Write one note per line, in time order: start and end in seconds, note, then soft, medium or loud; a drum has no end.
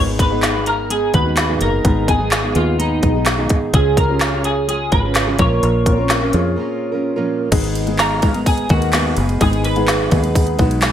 0.00 1.10 G#1 medium
0.00 0.63 G#2 medium
0.00 0.31 G#3 medium
0.00 0.27 B3 medium
0.00 0.32 B3 medium
0.00 0.27 D#4 medium
0.00 0.31 D#4 medium
0.00 0.27 G#4 medium
0.00 0.29 G#4 medium
0.19 0.64 B4 medium
0.19 kick medium
0.19 closed hi-hat medium
0.31 0.56 G#3 soft
0.31 1.04 B3 medium
0.31 0.55 B3 soft
0.31 1.04 D#4 medium
0.31 0.54 D#4 medium
0.31 0.53 G#4 medium
0.31 1.04 G#4 medium
0.43 snare medium
0.43 clap medium
0.43 closed hi-hat medium
0.54 0.88 G#3 soft
0.54 0.90 B3 soft
0.54 0.91 D#4 soft
0.54 0.90 G#4 soft
0.66 0.90 A#4 medium
0.66 closed hi-hat medium
0.89 1.25 G#3 medium
0.89 1.26 B3 medium
0.89 1.25 D#4 medium
0.89 1.14 G#4 medium
0.89 1.24 G#4 medium
0.89 closed hi-hat loud
1.14 1.58 D#2 medium
1.14 1.76 B3 medium
1.14 1.76 D#4 medium
1.14 1.76 F#4 medium
1.14 1.62 B4 loud
1.14 kick medium
1.14 closed hi-hat medium
1.25 1.50 G#3 soft
1.25 1.49 B3 soft
1.25 1.49 D#4 medium
1.25 1.48 G#4 medium
1.37 snare medium
1.37 clap medium
1.37 closed hi-hat medium
1.49 1.86 G#2 medium
1.49 1.86 D#3 medium
1.49 1.83 G#3 medium
1.49 1.84 B3 medium
1.49 1.85 D#4 medium
1.49 1.85 G#4 medium
1.61 1.83 F#1 medium
1.61 2.09 A#4 medium
1.61 closed hi-hat medium
1.84 2.52 G#1 medium
1.84 2.52 G#2 medium
1.84 2.20 G#3 medium
1.84 2.05 B3 medium
1.84 2.21 B3 medium
1.84 2.05 D#4 medium
1.84 2.20 D#4 medium
1.84 2.06 G#4 medium
1.84 2.18 G#4 medium
1.84 kick medium
1.84 closed hi-hat medium
2.08 2.50 B3 medium
2.08 2.50 D#4 medium
2.08 2.50 G#4 medium
2.08 2.57 G#4 medium
2.08 kick medium
2.08 closed hi-hat medium
2.20 2.45 G#3 medium
2.20 2.44 B3 medium
2.20 2.43 D#4 medium
2.20 2.42 G#4 medium
2.31 snare medium
2.31 clap medium
2.31 closed hi-hat medium
2.43 2.77 G#3 soft
2.43 2.79 B3 soft
2.43 2.79 D#4 soft
2.43 2.79 G#4 medium
2.55 3.00 D#2 medium
2.55 3.38 B3 medium
2.55 3.39 D#4 medium
2.55 2.79 F4 medium
2.55 3.39 G#4 medium
2.55 closed hi-hat medium
2.78 3.14 G#3 medium
2.78 3.15 B3 medium
2.78 3.46 D#4 medium
2.78 3.14 D#4 medium
2.78 3.13 G#4 medium
2.78 closed hi-hat loud
3.03 3.47 B1 medium
3.03 kick medium
3.03 closed hi-hat soft
3.14 3.38 G#3 soft
3.14 3.38 B3 soft
3.14 3.37 D#4 soft
3.14 3.37 G#4 medium
3.26 snare loud
3.26 clap medium
3.26 closed hi-hat medium
3.38 3.75 G#2 medium
3.38 3.75 D#3 medium
3.38 3.72 G#3 medium
3.38 3.74 B3 medium
3.38 3.74 D#4 medium
3.38 3.74 G#4 medium
3.49 kick medium
3.49 closed hi-hat medium
3.73 4.88 C#2 medium
3.73 4.41 C#3 medium
3.73 4.09 G#3 medium
3.73 4.05 C#4 medium
3.73 4.10 C#4 medium
3.73 4.05 F4 medium
3.73 4.09 F4 medium
3.73 4.05 G#4 medium
3.73 3.96 G#4 medium
3.73 4.07 G#4 medium
3.73 kick medium
3.73 closed hi-hat medium
3.97 4.45 A#4 medium
3.97 kick medium
3.97 closed hi-hat medium
4.09 4.82 C#4 medium
4.09 4.34 C#4 soft
4.09 4.82 F4 medium
4.09 4.34 F4 medium
4.09 4.15 G4 medium
4.09 4.32 G#4 medium
4.16 4.85 G#4 medium
4.21 snare loud
4.21 clap medium
4.21 closed hi-hat medium
4.33 4.68 C#4 soft
4.33 4.69 F4 soft
4.33 4.68 G#4 medium
4.44 4.68 G#4 medium
4.44 closed hi-hat medium
4.68 5.04 G#3 medium
4.68 5.04 C#4 medium
4.68 5.03 F4 medium
4.68 4.91 G#4 medium
4.68 5.01 G#4 medium
4.68 closed hi-hat loud
4.92 5.36 G#1 medium
4.92 5.37 C#4 medium
4.92 5.38 F4 medium
4.92 5.36 B4 loud
4.92 5.40 A#5 medium
4.92 kick medium
4.92 closed hi-hat medium
5.03 5.27 C#4 soft
5.03 5.27 F4 soft
5.03 5.26 G#4 medium
5.15 snare loud
5.15 clap medium
5.15 closed hi-hat medium
5.27 5.39 C#3 medium
5.27 5.39 G#3 medium
5.27 5.39 C#4 medium
5.27 5.39 F4 medium
5.27 5.39 G#4 medium
5.38 5.61 A#1 loud
5.38 5.98 A#2 medium
5.38 6.06 A#2 medium
5.38 5.98 F3 medium
5.38 5.98 A#3 loud
5.38 5.81 C#4 medium
5.38 5.98 C#4 medium
5.38 5.81 F4 medium
5.38 5.97 F4 medium
5.38 5.81 A#4 medium
5.38 5.96 A#4 medium
5.38 7.25 C#5 medium
5.38 kick loud
5.38 closed hi-hat medium
5.63 6.30 A#1 medium
5.63 closed hi-hat medium
5.86 5.92 C4 medium
5.86 6.28 F4 medium
5.86 6.28 A#4 medium
5.86 kick medium
5.86 closed hi-hat medium
5.92 6.31 C#4 medium
5.97 6.23 A#3 soft
5.97 6.22 C#4 medium
5.97 6.21 F4 medium
5.97 6.20 A#4 medium
6.09 snare loud
6.09 clap medium
6.09 closed hi-hat medium
6.21 6.55 A#3 soft
6.21 6.56 C#4 soft
6.21 6.57 F4 medium
6.21 6.57 A#4 medium
6.33 6.56 F2 medium
6.33 7.17 C#4 medium
6.33 7.17 F4 medium
6.33 7.17 G#4 medium
6.33 closed hi-hat medium
6.56 6.92 A#3 medium
6.56 6.93 C#4 medium
6.56 6.92 F4 medium
6.56 6.91 A#4 medium
6.92 7.16 A#3 soft
6.92 7.16 C#4 medium
6.92 7.15 F4 medium
6.92 7.15 A#4 medium
7.16 7.50 A#2 medium
7.16 7.51 F3 medium
7.16 7.52 A#3 medium
7.16 7.52 C#4 medium
7.16 7.52 F4 medium
7.16 7.52 A#4 medium
7.51 8.66 G#1 medium
7.51 8.22 G#2 medium
7.51 8.19 G#2 medium
7.51 8.23 D#3 medium
7.51 7.83 G#3 medium
7.51 8.21 G#3 medium
7.51 7.83 B3 medium
7.51 8.21 B3 loud
7.51 7.83 D#4 medium
7.51 8.23 D#4 medium
7.51 7.83 G#4 loud
7.51 8.25 G#4 medium
7.51 kick loud
7.51 crash medium
7.51 ride medium
7.64 ride soft
7.75 ride medium
7.87 8.18 G#3 medium
7.87 8.18 B3 medium
7.87 8.19 D#4 medium
7.87 8.19 G#4 medium
7.87 ride soft
7.99 8.47 A#4 loud
7.99 snare loud
7.99 clap medium
7.99 ride medium
8.22 8.34 G#3 medium
8.22 8.64 G#3 medium
8.22 8.64 B3 medium
8.22 8.34 B3 medium
8.22 8.64 D#4 medium
8.22 8.33 D#4 medium
8.22 8.65 G#4 medium
8.22 8.32 G#4 medium
8.22 kick medium
8.22 ride medium
8.33 8.68 G#3 soft
8.33 8.69 B3 medium
8.33 8.70 D#4 medium
8.33 8.69 G#4 medium
8.33 ride soft
8.46 8.71 G#4 loud
8.46 kick medium
8.46 ride medium
8.58 ride soft
8.69 9.14 D#2 medium
8.69 8.91 G#3 medium
8.69 9.32 G#3 medium
8.69 8.76 A#3 soft
8.69 8.93 B3 medium
8.69 9.33 D#4 medium
8.69 8.94 D#4 medium
8.69 9.15 F#4 medium
8.69 8.95 G#4 medium
8.69 9.33 A#4 medium
8.69 kick medium
8.69 ride soft
8.76 9.35 B3 medium
8.82 ride soft
8.93 9.15 G#3 medium
8.93 9.16 B3 medium
8.93 9.17 D#4 medium
8.93 9.18 G#4 medium
8.93 snare medium
8.93 clap medium
8.93 ride medium
9.16 9.39 F#1 medium
9.16 9.40 G#3 medium
9.16 9.40 B3 medium
9.16 9.41 D#4 medium
9.16 9.41 G#4 medium
9.16 ride medium
9.29 ride soft
9.40 10.08 G#1 medium
9.40 10.11 G#2 medium
9.40 10.08 G#2 medium
9.40 10.12 D#3 medium
9.40 9.72 G#3 medium
9.40 10.10 G#3 medium
9.40 9.72 B3 medium
9.40 10.11 B3 medium
9.40 9.72 D#4 medium
9.40 10.12 D#4 medium
9.40 9.72 G#4 medium
9.40 9.65 G#4 medium
9.40 10.13 G#4 loud
9.40 kick medium
9.40 ride medium
9.53 ride soft
9.64 10.92 B4 loud
9.64 ride medium
9.76 10.08 G#3 medium
9.76 10.08 B3 medium
9.76 10.08 D#4 medium
9.76 10.08 G#4 medium
9.76 ride soft
9.88 snare loud
9.88 clap medium
9.88 ride medium
10.11 10.56 D#2 loud
10.11 10.23 G#3 medium
10.11 10.54 G#3 medium
10.11 10.24 B3 medium
10.11 10.54 B3 medium
10.11 10.54 D#4 medium
10.11 10.23 D#4 medium
10.11 10.54 G#4 medium
10.11 10.22 G#4 medium
10.11 kick medium
10.11 ride medium
10.23 10.57 G#3 medium
10.23 10.58 B3 medium
10.23 10.59 D#4 medium
10.23 10.59 G#4 medium
10.23 ride soft
10.35 kick medium
10.35 ride medium
10.47 ride soft
10.58 10.92 B1 medium
10.58 10.81 G#3 medium
10.58 10.92 G#3 medium
10.58 10.92 B3 medium
10.58 10.82 B3 medium
10.58 10.92 D#4 medium
10.58 10.83 D#4 medium
10.58 10.92 F#4 medium
10.58 10.84 G#4 medium
10.58 kick medium
10.58 ride soft
10.71 ride soft
10.82 10.92 G#3 medium
10.82 10.92 B3 medium
10.82 10.92 D#4 medium
10.82 10.92 G#4 medium
10.82 snare loud
10.82 clap medium
10.82 ride medium